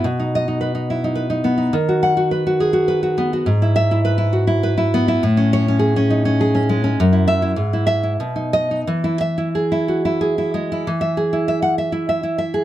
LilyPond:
\new Staff \with { instrumentName = "Nylon-string guitar" } { \time 3/4 \key e \major \tempo 4 = 101 << { r8 dis''8 r2 | r8 fis''8 r2 | r8 e''8 r2 | r8 cis''8 r2 |
r8 e''8 r8 e''8 r8 dis''8 | r8 e''8 r2 | r4 r16 fis''16 r4. | } \\ { b,16 dis'8 dis'16 b'16 dis'16 e'16 dis'16 b'16 dis'16 b16 dis'16 | dis16 fis'8 fis'16 b'16 fis'16 gis'16 fis'16 b'16 fis'16 b16 fis'16 | gis,16 e'8 e'16 b'16 e'16 fis'16 e'16 b'16 e'16 b16 e'16 | a,16 cis'8 cis'16 gis'16 cis'16 dis'16 cis'16 gis'16 cis'16 gis16 cis'16 |
fis,16 e'8 e'16 gis,16 e'8 e'16 b,16 dis'8 dis'16 | e16 e'8 e'16 gis'16 e'16 fis'16 e'16 gis'16 e'16 gis16 e'16 | e16 e''16 gis'16 e'16 e''8 e''16 e'16 e''16 e'16 e''16 gis'16 | } >> }